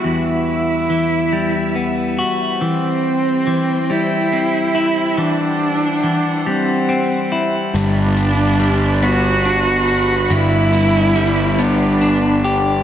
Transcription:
<<
  \new Staff \with { instrumentName = "String section" } { \time 6/8 \key c \lydian \tempo 4. = 47 << { e''2. | g''2. | fis''2. | b''2.~ |
b''2. | } \\ { <e' b'>2. | <e' g' c''>2.~ | <e' g' c''>2. | <g b' d''>2.~ |
<g b' d''>2. | } >> }
  \new Staff \with { instrumentName = "Cello" } { \time 6/8 \key c \lydian e'2~ e'8 r8 | c'4. e'4. | d'4. c'4 r8 | d'4. fis'4. |
e'4. d'4 r8 | }
  \new Staff \with { instrumentName = "Clean electric guitar" } { \clef bass \time 6/8 \key c \lydian <e, e g b fis'>4 e8 g8 b8 fis'8 | e4 e8 g8 c'8 e'8 | e4 e8 g8 c'8 e'8 | g,4 g8 b8 d'4 |
g,4 g8 b8 d'8 g'8 | }
  \new Staff \with { instrumentName = "Picked electric bass" } { \clef bass \time 6/8 \key c \lydian r2. | r2. | r2. | g,,2. |
g,,2. | }
  \new DrumStaff \with { instrumentName = "Drums" } \drummode { \time 6/8 r4. r4. | r4. r4. | r4. r4. | hh8 hh8 hh8 hh8 hh8 hh8 |
hh8 hh8 hh8 hh8 hh8 hh8 | }
>>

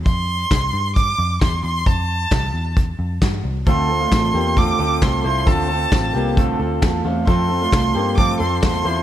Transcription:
<<
  \new Staff \with { instrumentName = "Violin" } { \time 4/4 \key f \major \tempo 4 = 133 c'''2 d'''4 c'''8 c'''8 | a''2 r2 | c'''2 d'''4 c'''8 c'''8 | a''2 r2 |
c'''2 d'''8 c'''8 c'''4 | }
  \new Staff \with { instrumentName = "Steel-string acoustic guitar" } { \time 4/4 \key f \major r1 | r1 | <d a c' f' a'>8 <c' f' a'>8 <a c' f' a'>8 <c' f' a'>8 <d a c' f' a'>8 <c' f' a'>8 <a c' f' a'>8 <c' f' a'>8 | <d a c' f' a'>8 <c' f' a'>8 <a c' f' a'>8 <c' f' a'>8 <d a c' f' a'>8 <c' f' a'>8 <a c' f' a'>8 <c' f' a'>8 |
<f a c' f' a'>8 <c' f' a'>8 <a c' f' a'>8 <c' f' a'>8 <f a c' f' a'>8 <c' f' a'>8 <a c' f' a'>8 <c' f' a'>8 | }
  \new Staff \with { instrumentName = "Clean electric guitar" } { \time 4/4 \key f \major r1 | r1 | <c' a'>8. <a f'>8. <bes g'>8 <c' a'>8 <c' a'>4 <e' c''>8 | <c' a'>8 <c' a'>4 <bes g'>8 <c' a'>4. <a f'>8 |
<c' a'>8. <a f'>8. <bes g'>8 <c' a'>8 <c' a'>4 <e' c''>8 | }
  \new Staff \with { instrumentName = "Picked electric bass" } { \clef bass \time 4/4 \key f \major f,4 c,8 g,4 f,8 e,8 e,8 | f,4 c,8 e,4 f,8 g,8 c,8 | d,4 a,,8 e,4 d,8 c,8 c,8 | d,4 a,,8 c,4 d,8 e,8 e,8 |
f,4 c,8 g,4 f,8 e,8 e,8 | }
  \new DrumStaff \with { instrumentName = "Drums" } \drummode { \time 4/4 <hh bd>4 <hh bd sn>4 <hh bd>4 <hh bd sn>4 | <hh bd>4 <hh bd sn>4 <hh bd>4 <hh bd sn>4 | <hh bd>4 <hh bd sn>4 <hh bd>4 <hh bd sn>4 | <hh bd>4 <hh bd sn>4 <hh bd>4 <hh bd sn>4 |
<hh bd>4 <hh bd sn>4 <hh bd>4 <hh bd sn>4 | }
>>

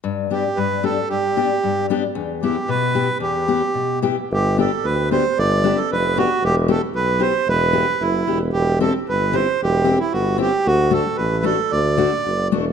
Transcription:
<<
  \new Staff \with { instrumentName = "Accordion" } { \time 2/4 \key g \major \tempo 4 = 113 r8 g'8 b'8 a'8 | g'4. r8 | r8 g'8 b'4 | g'4. r8 |
g'8 a'8 b'8 c''8 | d''8. a'16 b'8 fis'8 | g'8 a'8 b'8 c''8 | b'4 e'8. r16 |
g'8 a'8 b'8 c''8 | g'8. e'16 fis'8 g'8 | fis'8 a'8 b'8 a'8 | d''4. r8 | }
  \new Staff \with { instrumentName = "Steel-string acoustic guitar" } { \time 2/4 \key g \major << { r8 <b d' g'>8 r8 <b d' g'>8 | r8 <b d' g'>8 r8 <b d' g'>8 | r8 <b e' g'>8 r8 <b e' g'>8 | r8 <b e' g'>8 r8 <b e' g'>8 |
r8 <b d' g'>8 r8 <b d' g'>8 | r8 <b d' g'>8 r8 <b d' g'>8 | r8 <b e' g'>8 r8 <b e' g'>8 | r8 <b e' g'>8 r8 <b e' g'>8 |
r8 <c' e' g'>8 r8 <c' e' g'>8 | r8 <c' e' g'>8 r8 <c' e' g'>8 | r8 <a d' fis'>8 r8 <a d' fis'>8 | r8 <a d' fis'>8 r8 <a d' fis'>8 | } \\ { g,4 g,4 | g,4 g,4 | e,4 b,4 | e,4 b,4 |
r2 | r2 | r2 | r2 |
r2 | r2 | r2 | r2 | } >> }
  \new Staff \with { instrumentName = "Tuba" } { \clef bass \time 2/4 \key g \major r2 | r2 | r2 | r2 |
g,,4 d,4 | g,,4 f,,4 | e,,4 b,,4 | e,,4 fis,,8 e,,8 |
e,,4 g,,4 | e,,4 g,,4 | d,4 a,,4 | d,4 fis,,8 e,,8 | }
>>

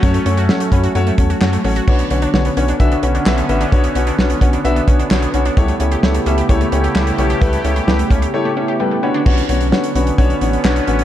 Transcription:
<<
  \new Staff \with { instrumentName = "Grand piano" } { \time 4/4 \key b \minor \tempo 4 = 130 << { r4. b''8 a''4 fis''4 | r1 | r1 | r1 |
r2 r8 e''8 g''8 b''8 | r1 | } \\ { <cis' fis' a' cis''>8 <cis' fis' a' cis''>8 <cis' fis' a' cis''>8 <cis' fis' a' cis''>8 <cis' fis' a' cis''>8 <cis' fis' a' cis''>8 <cis' fis' a' cis''>8 <cis' fis' a' cis''>8 | <d' fis' b' cis''>8 <d' fis' b' cis''>8 <d' fis' b' cis''>8 <d' fis' b' cis''>8 <d' fis' b' e''>8 <d' fis' b' cis''>8 <d' fis' b' e''>8 <d' fis' b' e''>8 | <d' fis' b' cis''>8 <d' fis' b' cis''>8 <d' fis' b' cis''>8 <d' fis' b' cis''>8 <d' fis' b' e''>8 <d' fis' b' cis''>8 <d' fis' b' cis''>8 <d' fis' b' cis''>8 | <e' g' a' cis''>8 <e' g' a' cis''>8 <e' g' a' cis''>8 <e' g' a' e''>8 <e' g' a' cis''>8 <e' g' a' cis''>8 <e' g' a' cis''>8 <e' g' a' cis''>8 |
<e' g' a' b'>8 <e' g' a' cis''>8 <e' g' a' b'>8 <e' g' a' cis''>8 <e' g' a' cis''>8 <e' g' a' cis''>8 <e' g' a' b'>8 <d' fis' b' cis''>8 | <cis' d' fis' b' cis''>8 <cis' d' fis' b' cis''>8 <cis' d' fis' b' cis''>8 <cis' d' fis' b' cis''>8 <cis' d' fis' b' cis''>8 <cis' d' fis' b' cis''>8 <cis' d' fis' b' cis''>8 <cis' d' fis' b' cis''>8 | } >> }
  \new Staff \with { instrumentName = "Synth pluck" } { \time 4/4 \key b \minor fis16 a16 cis'16 fis'16 fis16 a16 cis'16 fis'16 fis16 a16 cis'16 fis'16 fis16 a16 cis'16 fis'16 | d16 b16 cis'16 d'16 d16 b16 cis'16 d'16 d16 b16 cis'16 d'16 d16 b16 cis'16 d'16 | d16 b16 cis'16 d'16 d16 b16 cis'16 d'16 d16 b16 cis'16 d'16 d16 b16 cis'16 d'16 | g16 a16 cis'16 g'16 g16 a16 cis'16 g'16 g16 a16 cis'16 g'16 g16 a16 cis'16 g'16 |
g16 a16 cis'16 g'16 g16 a16 cis'16 g'16 g16 a16 cis'16 g'16 g16 a16 cis'16 d'16 | r1 | }
  \new Staff \with { instrumentName = "Analog synth pad" } { \time 4/4 \key b \minor <fis a cis'>1 | <d b cis'>1~ | <d b cis'>1 | <cis a e' g'>1~ |
<cis a e' g'>2.~ <cis a e' g'>8 <d cis'>8 | <d b cis'>1 | }
  \new Staff \with { instrumentName = "Analog synth bass" } { \clef bass \time 4/4 \key b \minor fis,8 fis,8. r16 fis,8 fis,8 e,8 fis,8 a,,8 | b,,8 b,,8 b,,8 b,,8 b,,8 b,,8 b,,8 a,,8 | b,,8 b,,8 b,,8 b,,8 b,,8 b,,8 b,,8 b,,8 | cis,8 cis,8 cis,8 cis,8 cis,8 cis,8 cis,8 b,,8 |
cis,8 cis,8 cis,8 cis,8 r2 | b,,8 b,,8. r16 b,,8 b,,8 a,,8 b,,8 a,,8 | }
  \new DrumStaff \with { instrumentName = "Drums" } \drummode { \time 4/4 <hh bd>16 hh16 hh16 hh16 sn16 hh16 <hh bd>16 hh16 hh16 hh16 <hh bd>16 hh16 <hc sn>16 hh16 hho16 hh16 | <cymc bd>16 hh16 hh16 hh16 sn16 hh16 hh16 hh16 <hh bd>16 hh16 hh16 hh16 <hc sn>16 hh16 hh16 hh16 | <hh bd>16 hh16 hh16 hh16 sn16 hh16 <hh bd>16 hh16 hh16 hh16 <hh bd>16 hh16 <hc sn>16 hh16 hh16 hh16 | <hh bd>16 hh16 hh16 hh16 sn16 hh16 hh16 hh16 <hh bd>16 hh16 hh16 hh16 <hc sn>16 hh16 hh16 hh16 |
<hh bd>16 hh16 hh16 hh16 sn16 hh16 <hh bd>16 hh16 r4 r4 | <cymc bd>16 hh16 hh16 hh16 sn16 hh16 hh16 hh16 <hh bd>16 hh16 hh16 hh16 <hc sn>16 hh16 hh16 hh16 | }
>>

